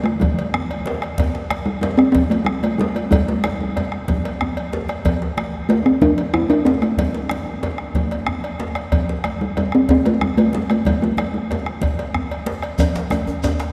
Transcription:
0.04 A3, bombo rim
0.20 G3, bombo low, cowbell, high conga, djembe tone, low conga
0.39 cowbell, djembe slap
0.54 bombo rim, djembe bass
0.71 cowbell, djembe slap
0.86 djembe slap, high conga
1.02 bombo rim, cowbell, djembe slap
1.18 bombo low, cowbell, djembe tone, low conga, djembe bass
1.35 djembe slap
1.50 bombo rim, cowbell, high conga
1.66 G3, bombo rim, high conga
1.81 G3, cowbell, djembe slap, high conga, djembe bass
1.98 C4, bombo rim
2.12 C4, bombo low, cowbell, high conga, djembe tone, low conga
2.30 A3, cowbell, djembe slap
2.45 G3, bombo rim
2.63 A3, cowbell, djembe slap
2.78 G3, djembe slap, high conga
2.95 A3, cowbell, djembe slap
3.11 G3, bombo low, cowbell, djembe slap, high conga, djembe tone, low conga, djembe bass
3.28 A3, djembe slap, high conga
3.44 G3, bombo rim, cowbell, high conga
3.60 G3, djembe slap
3.76 bombo rim, cowbell, djembe slap, djembe bass
3.92 bombo rim, djembe slap
4.08 bombo rim, bombo low, cowbell, djembe slap, high conga, djembe tone, low conga
4.25 cowbell, djembe slap
4.41 bombo rim, djembe bass
4.57 cowbell, low conga
4.73 djembe slap, high conga
4.89 bombo rim, cowbell, high conga
5.05 bombo low, cowbell, djembe tone, low conga, djembe bass
5.22 djembe slap
5.37 bombo rim, cowbell, high conga
5.54 bombo rim, high conga
5.69 A3, cowbell, djembe slap, high conga
5.83 C4 D4, bombo rim
6.01 D4, bombo low, cowbell, high conga, djembe tone, low conga
6.18 cowbell, djembe slap
6.34 E4, bombo rim, djembe bass
6.50 D4, cowbell, djembe slap
6.65 C4, djembe slap, high conga
6.82 A3, bombo rim, cowbell, djembe slap
6.97 G3, bombo low, cowbell, djembe tone, djembe bass, low conga
7.14 djembe slap
7.29 bombo rim, cowbell, high conga
7.46 bombo rim, high conga
7.63 cowbell, djembe slap, high conga, djembe bass
7.78 bombo rim
7.94 bombo low, cowbell, high conga, djembe tone, low conga
8.11 cowbell, djembe slap
8.27 bombo rim, djembe bass
8.44 cowbell, djembe slap
8.59 djembe slap, high conga
8.75 bombo rim, cowbell, djembe slap
8.92 bombo low, cowbell, djembe tone, low conga, djembe bass
9.09 djembe slap
9.24 bombo rim, cowbell, high conga
9.40 G3, bombo rim, high conga
9.57 G3, cowbell, djembe slap, djembe bass
9.72 C4, bombo rim
9.89 C4, bombo low, cowbell, high conga, djembe tone, low conga
10.05 A3, cowbell, djembe slap
10.21 G3, bombo rim, djembe bass
10.37 A3, cowbell, djembe slap
10.53 G3, djembe slap, high conga
10.70 A3, bombo rim, cowbell, djembe slap
10.85 G3, bombo low, cowbell, high conga, djembe tone, low conga, djembe bass
11.01 A3, bombo rim, djembe slap, high conga
11.17 G3, bombo rim, cowbell, djembe slap, high conga
11.34 G3
11.51 cowbell, djembe slap, djembe bass
11.66 bombo rim, high conga
11.82 bombo low, cowbell, djembe slap, high conga, djembe tone, low conga
11.99 cowbell, djembe slap
12.14 bombo rim, high conga, djembe bass
12.30 cowbell, djembe slap, high conga
12.46 bombo rim, djembe slap, high conga
12.62 bombo rim, cowbell, djembe slap
12.78 bombo low, cowbell, djembe tone, low conga, djembe bass, shekere
12.95 djembe slap, shekere
13.10 bombo rim, cowbell, high conga, djembe tone
13.27 bombo rim, high conga, djembe tone
13.43 cowbell, djembe slap, djembe tone, high conga, djembe bass, shekere
13.59 bombo rim, djembe slap, shekere

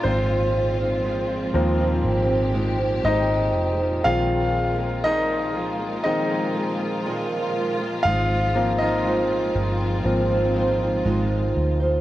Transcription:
Already playing: A#2 F4
0.03 G#1 F3 G#3 C4 D#4 F4 C5
0.78 D#4 F4 C5
1.04 G#3 D#4 F4 C5
1.54 D#2 F3 G#3 A#3 C4 D#4 F4 C5
1.79 D#4 F4 C5
2.04 G#1 G4
2.28 D#4 F4 C5
2.53 G#3 D#4 F4 C5
2.78 D#4 F4 C5
3.03 G#1 G#3 D#4 F4 C5 D#5
3.55 F1
3.78 D#4 F4 C5
4.03 A#1 A#2 D#3 F3 G#3 A#3 C4 F4 G#4 A#4 F5
4.78 F3 A#3 G#4 A#4
5.04 A#2 D#3 F3 A#3 D#4 G#4 A#4 D#5
5.54 C2 F3 A#3 G#4 A#4
5.79 F3 A#3 G#4 A#4
6.04 A#1 D#3 G#3 C4 D#4 D#5
6.29 F3 A#3 G#4 A#4
6.54 F3 A#3 G#4 A#4
7.05 A#2 D#3 F3 A#3 G#4 A#4
7.79 F3 A#3 G#4 A#4
8.03 G#1 G#3 C4 D#4 F4 F5
8.07 C5
8.56 F3 A#3 C4
8.78 D#4 F4 C5 D#5
8.82 D#4
9.05 G#3 D#4 F4 C5
9.55 G1 G#3 D#4 F4 C5
10.04 G#1 F3 A#3 C4
10.30 D#4 F4 C5
10.55 G#3 D#4 F4 C5
10.80 D#4 F4 C5
11.04 G#1 G#3 D#4 F4 C5
11.56 D2
11.80 D#4 F4 C5

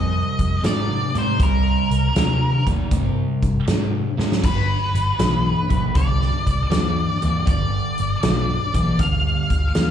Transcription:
Already playing: F2 C3 G3 D#5
0.39 F2, kick, closed hi-hat
0.63 G#2 C3 A3 D5, snare, closed hi-hat
1.14 G#2 C3 A3 C5, closed hi-hat
1.39 C2 C3 G3, kick, closed hi-hat
1.43 A#4
1.90 C2, closed hi-hat
2.15 D#2 C3 A3, snare, closed hi-hat
2.67 D#2 C3 A3, kick, closed hi-hat
2.91 G2 C3 G3, kick, closed hi-hat
3.43 G2, kick, closed hi-hat
3.67 G#2 C3 A3, snare, closed hi-hat
4.18 G#2 C3 A3, snare
4.32 snare
4.43 G1 G2 D3 B4, kick, closed hi-hat, crash
4.95 G1, closed hi-hat
5.19 B1 G2 E3, snare, closed hi-hat
5.69 B1 G2 E3, kick, closed hi-hat
5.94 C2 G2 D3 D5, kick, closed hi-hat
6.22 snare
6.46 C2, kick, closed hi-hat
6.70 D#2 G2 E3, snare, closed hi-hat
7.22 D#2 G2 E3, closed hi-hat
7.46 G1 G2 D3 D5, kick, closed hi-hat
7.98 G1, closed hi-hat
8.23 B1 G2 E3, snare, closed hi-hat
8.74 B1 G2 E3, kick, closed hi-hat
8.99 D2 G2 D3 F5, kick, closed hi-hat
9.50 D2, kick, closed hi-hat
9.75 D#2 G2 E3, snare, closed hi-hat

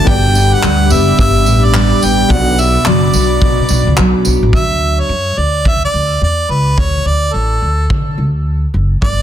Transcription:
Already playing: D3 E3 A3 D4
0.05 G1 G2 B3 D4 G4 D5 G5 B5 D6, kick
0.35 D4, tambourine
0.53 F#5
0.63 D2 G3, clap
0.90 F#1 B3 E5, tambourine
1.19 G1 G2 E5, kick
1.46 A1 D4, tambourine
1.65 D5
1.74 G3, clap
2.02 A1 B3 G5, tambourine
2.29 B1 B2 B3 D4 F#4 D5 F#5 B5 D6, kick
2.58 D4 E5, tambourine
2.85 F#1 F#3 D5, clap
3.13 B1 B3, tambourine
3.42 B2, kick
3.59 B2
3.69 B1 D4, tambourine
3.87 C#2
3.97 B1 F#3, clap
4.25 B1 B3, tambourine
4.43 A1
4.53 D2 E5, kick
5.00 C#5
5.09 F#2
5.37 D2 D5
5.65 E5, kick
5.84 D5
5.94 D2
6.21 E2 D5
6.49 C#2 B4
6.78 D2 C#5, kick
7.05 D2 D5
7.33 A1 A4
7.62 D2
7.90 D3, kick
8.18 D2
8.74 F#1
9.02 G1 D5, kick

